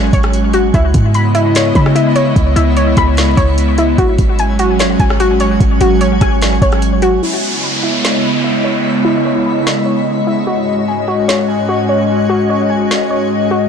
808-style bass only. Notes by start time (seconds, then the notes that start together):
Already playing: G#1
0.13 G#1
0.74 C#2
0.94 G#2
1.75 C#3
2.36 C#2
2.56 C#2
2.97 C#2
3.37 C#2
3.98 G#1
4.19 G#1
5.00 G#1
5.60 G#1
5.81 G#1
6.01 A1
6.21 G#1
6.62 G#1